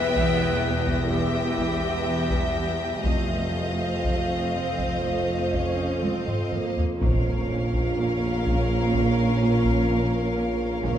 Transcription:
Already playing: E1 E2 B3 G4 B4 E5 G5 G6 A#6
0.16 E3, taiko
0.63 E2
0.86 taiko
1.09 E2 B3 G4 E5 G5
1.57 E3, taiko
2.06 E3
2.30 taiko
2.55 E2
3.04 F1 F2 A3 F4 A4 C5 D#5 F5, taiko
3.54 F3
4.04 F3 A3, taiko
4.54 F2 C4
4.79 taiko
5.03 F2 A3
5.52 F3 C#4, taiko
6.02 F3 C4, taiko high
6.27 taiko low-mid
6.52 F2 A#3, taiko low-mid
6.77 taiko low
7.00 A#1 A#2 C#4 F4 A#4 C#5 F5, taiko, impact
7.50 A#2
7.74 taiko
7.98 A#2
8.46 A#2, taiko
8.94 A#2, taiko
9.41 A#2
9.65 taiko
9.89 A#2
10.36 A#3
10.84 A#1 A#2 C#4 F4 A#4 C#5 F5, taiko

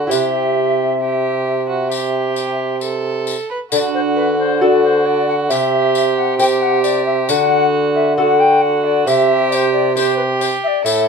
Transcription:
Already playing: D3 F#4
0.07 C3 E4 G4 C5 E5
0.11 C3 G4, tambourine
1.01 G4
1.70 F#4
1.92 G4, tambourine
2.36 tambourine
2.81 A4, tambourine
3.27 tambourine
3.51 B4
3.71 D3 F#4 D5, tambourine
3.94 C5
4.15 B4
4.38 C5
4.60 F#4 A4 D5
4.83 C5
5.05 D5
5.28 F#5
5.48 C3 G4 E5, tambourine
5.95 tambourine
6.16 F#5
6.38 G4 C5 G5, tambourine
6.61 F#5
6.82 D5, tambourine
7.05 E5
7.27 D3 F#4 F#5, tambourine
7.95 E5
8.16 F#4 A4 F#5
8.39 G5
8.61 F#5
8.84 D5
9.05 C3 G4 E5, tambourine
9.50 D5, tambourine
9.54 C5
9.72 D5
9.94 G4 C5, tambourine
10.16 B4
10.40 C5, tambourine
10.63 E5
10.67 D5
10.84 A2 A4 E5, tambourine

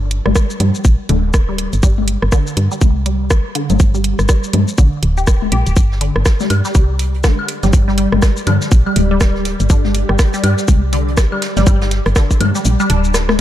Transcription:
Already playing: G1
0.11 closed hi-hat
0.26 G1 G3, cross-stick, high tom
0.36 kick, cross-stick, shaker
0.50 shaker
0.60 G2 G3, closed hi-hat, low conga
0.75 shaker
0.85 A#1, kick, shaker
1.09 D1 D3, closed hi-hat, high tom
1.34 kick, cross-stick, shaker
1.49 G3
1.58 closed hi-hat
1.73 G1, closed hi-hat, shaker
1.83 G1 G3, kick, shaker
1.98 high tom
2.08 closed hi-hat
2.22 G1, cross-stick
2.32 D3, kick, cross-stick, shaker
2.47 shaker
2.57 G2, closed hi-hat
2.72 G3, shaker
2.81 C2, kick, high tom, shaker
3.06 G3, closed hi-hat
3.31 kick, cross-stick, shaker
3.55 D3, closed hi-hat
3.70 G1, closed hi-hat, high tom, low conga, shaker
3.80 G1, kick, shaker
3.94 G3, shaker
4.04 closed hi-hat
4.19 G1, cross-stick, shaker
4.29 G3, kick, cross-stick, shaker
4.44 shaker
4.53 G2, closed hi-hat, high tom, low conga
4.68 shaker
4.78 A#1 D3, kick, shaker
5.03 D1, closed hi-hat
5.17 G4, shaker
5.27 kick, cross-stick, shaker
5.42 high tom
5.52 A#1 G4, closed hi-hat
5.67 D1, closed hi-hat, shaker
5.76 G1 G3 G4, kick, closed hi-hat, shaker
5.92 snare
6.01 D3, closed hi-hat
6.16 G1, cross-stick
6.25 kick, cross-stick, snare, closed hi-hat, shaker
6.40 G3, snare, high tom, shaker
6.50 G2, closed hi-hat, high woodblock
6.65 G3, snare, shaker
6.75 C2 G3, kick, closed hi-hat, shaker
6.99 closed hi-hat
7.14 closed hi-hat
7.24 D3, kick, cross-stick, snare, closed hi-hat, high tom, shaker
7.39 high woodblock
7.48 closed hi-hat
7.63 G1 G3, snare, closed hi-hat, low conga, shaker
7.73 G1, kick, closed hi-hat, shaker
7.88 G3, snare
7.97 G3, closed hi-hat
8.12 G1, cross-stick, high tom
8.22 kick, cross-stick, snare, closed hi-hat, shaker
8.37 closed hi-hat, shaker
8.46 G2 D3, closed hi-hat, low conga, high woodblock
8.61 snare, shaker
8.71 A#1, kick, closed hi-hat, shaker
8.86 G3, high woodblock
8.96 D1, closed hi-hat, high tom
9.11 G3
9.21 G3, kick, cross-stick, snare, closed hi-hat, shaker
9.35 snare
9.45 snare, closed hi-hat
9.60 G1, closed hi-hat, shaker
9.70 G1 D3, kick, closed hi-hat, shaker
9.84 snare, high tom
9.95 closed hi-hat
10.09 G1 G3, cross-stick
10.19 kick, cross-stick, snare, closed hi-hat, shaker
10.34 G3, snare, shaker
10.44 G2 G3, closed hi-hat, high woodblock
10.58 snare, shaker
10.68 C2, kick, closed hi-hat, high tom, shaker
10.93 D3, closed hi-hat
11.08 closed hi-hat
11.17 kick, cross-stick, snare, closed hi-hat, shaker
11.32 G3, high woodblock
11.42 snare, closed hi-hat
11.57 G1 G3, snare, closed hi-hat, high tom, low conga, shaker
11.67 G1 G3, kick, closed hi-hat, shaker
11.81 snare, closed hi-hat
11.91 snare, closed hi-hat
12.05 G1, cross-stick, closed hi-hat
12.15 D3, kick, cross-stick, snare, closed hi-hat, shaker
12.30 kick, closed hi-hat, shaker
12.41 G2, closed hi-hat, high tom, low conga, high woodblock
12.55 G3, snare, shaker
12.65 A#1, closed hi-hat, shaker
12.80 G3, high woodblock, shaker
12.90 D1 D4, closed hi-hat
13.05 shaker
13.14 cross-stick, snare, closed hi-hat, shaker
13.29 cross-stick, snare, high tom

